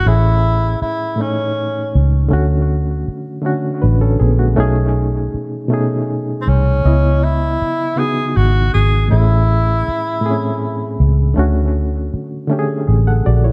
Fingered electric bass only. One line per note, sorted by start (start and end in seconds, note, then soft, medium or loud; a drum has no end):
0.06 0.77 A1 medium
0.82 muted fingered electric bass stroke soft
1.95 2.28 C#2 medium
2.32 3.03 D2 medium
3.08 muted fingered electric bass stroke soft
3.84 4.17 A1 medium
4.21 4.54 A#1 medium
4.58 5.29 B1 medium
5.34 muted fingered electric bass stroke soft
6.48 6.81 C2 medium
6.85 7.56 C#2 medium
7.62 muted fingered electric bass stroke soft
8.37 8.70 G#1 medium
8.75 9.08 G#1 medium
9.12 9.83 A1 loud
9.88 muted fingered electric bass stroke soft
11.00 11.33 C#2 medium
11.37 12.08 D2 medium
12.14 muted fingered electric bass stroke soft
12.89 13.22 A1 medium
13.27 13.52 A#1 medium